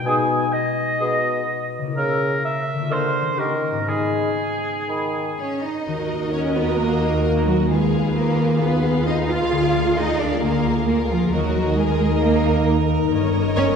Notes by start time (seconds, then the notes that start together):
Already playing: B2 G#3 D#4 D#5
0.01 B4
0.05 B2 G#4 G#5 D#6
0.53 D#5
1.00 B2 G#4 D#6
1.78 C#3
1.83 A#3
1.88 E4
1.92 A#4
1.97 C#3 A#4 E6
2.45 E5
2.73 D3
2.78 A#3
2.82 F4
2.87 D3 G#4 A#4 F6
2.92 C5
3.22 D#3
3.26 A#3
3.31 C#4
3.35 D#3 G4 C#6
3.39 A#4
3.71 G#2
3.76 B3
3.80 D#4
3.85 G#4 B5
3.89 G#3
4.89 D#3 G#4 B5
5.38 C#4 C#5
5.64 D#4 D#5
5.87 D#2 D#3 F#4 A#4 D#5
6.10 D#4
6.32 C#4 A#4 C#5
6.55 B3 F#4 B4
6.78 A#3 A#4
7.02 D#4
7.24 A#3 A#4
7.47 F#3 F#4
7.70 D#3 G#3 F4 G#4 B4 F5
7.94 B3
8.15 A#3 G#4 A#4
8.38 F4
8.60 D#3 B3 B4
8.84 B3
9.06 D#4 G#4 D#5
9.28 F4 F5
9.52 D2 D3 A#4
9.75 A#3
9.97 D#4 G#4 D#5
10.20 D4 F4 D5
10.42 D3 A#3 A#4
10.66 A#3
10.87 A#3 G#4 A#4
11.10 F3 F4
11.32 D#2 D#3 F#3 F#4 A#4 D#5
11.55 D#4
11.77 G#3 G#4 A#4
12.00 D#4
12.22 A#3 A#4
12.45 D#4
12.67 A#4
12.89 D#4
13.11 G1 G2 C#5 D#5
13.34 C#4
13.57 C#4 A#4 C#5